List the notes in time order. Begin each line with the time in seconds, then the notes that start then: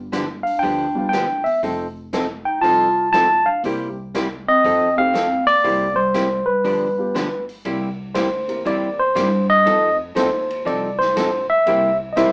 Already playing: G1
0.12 D3 F3 B3 D4 G4, snare, closed hi-hat
0.43 D4 F5, open hi-hat
0.58 D4 G5
0.62 D2 D3 F3 B3 D4 G4, kick, open hi-hat
0.95 G3 B3 D4 F4
1.09 D3 D4 G5
1.13 F3 B3 D4 G4, snare, closed hi-hat
1.44 B3 E5, open hi-hat
1.63 F1 F3 C4 D#4 A4, kick, open hi-hat
2.13 F3 C4 D#4 A4, snare, closed hi-hat
2.45 D#4 G5
2.61 C2 F3 C4 D#4 F4 A4 A5, kick, open hi-hat
3.11 F3 C4 D#4 F4 A4 A5, snare, closed hi-hat
3.44 D4 F5
3.63 C2 C3 G3 A#3 C4 E4 G4, kick, open hi-hat
4.15 C3 G3 A#3 E4 G4, snare, closed hi-hat
4.48 C4 D#5
4.64 F2 F3 C4 D#4 A4, kick, open hi-hat
4.96 A3 C4 D#4 G4 F5
5.13 F3 C4 D#4 A4, snare, closed hi-hat
5.46 A#3 D5, open hi-hat
5.64 C2 C3 G3 A#3 C4 E4 G4, kick, open hi-hat
5.95 G3 C5
6.14 C3 G3 A#3 E4 G4, snare, closed hi-hat
6.45 G3 B4
6.64 G1 D3 F3 B3 D4 G4, kick, open hi-hat
6.97 B3 D4 F4 G4
7.15 D3 F3 B3 D4 G4, snare, closed hi-hat
7.49 open hi-hat
7.65 C2 C3 G3 A#3 E4 G4, kick, ride
8.14 D2 C3 G3 A#3 E4 G4 C5, kick, snare, hi-hat pedal, ride
8.48 A#3 C4 E4 G4 A#4, ride
8.65 E2 C3 G3 A#3 E4 G4 D5, kick, ride
9.00 C5
9.15 G2 C3 G3 A#3 E4 G4, kick, snare, hi-hat pedal, ride
9.50 D#5
9.66 F2 F3 A3 C4 D#4 F4 A4, kick, ride
10.15 D#2 F3 A3 C4 D#4 F4 A4 C5, kick, snare, hi-hat pedal, ride
10.50 ride
10.65 C2 F3 C4 D#4 A4 D5, kick, ride
10.99 C5, snare
11.16 A#1 F3 C4 D#4 A4, kick, snare, hi-hat pedal, ride
11.49 E5, muted upright bass stroke
11.66 C2 C3 G3 A#3 C4 E4 G4 A#4, kick, ride
12.13 C3 D#5
12.17 B1 G3 A#3 E4 G4 A#4 C5 E5, kick, snare, hi-hat pedal, ride